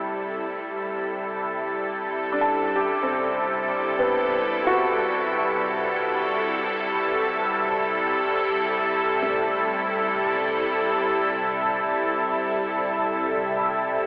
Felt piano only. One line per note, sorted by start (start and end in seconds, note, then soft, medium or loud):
0.00 2.46 A3 soft
2.32 3.22 D4 medium
2.41 6.98 A5 medium
2.76 4.85 G4 medium
3.03 4.18 C4 medium
3.99 8.57 B3 medium
4.67 9.27 F#4 medium
9.22 13.91 A3 soft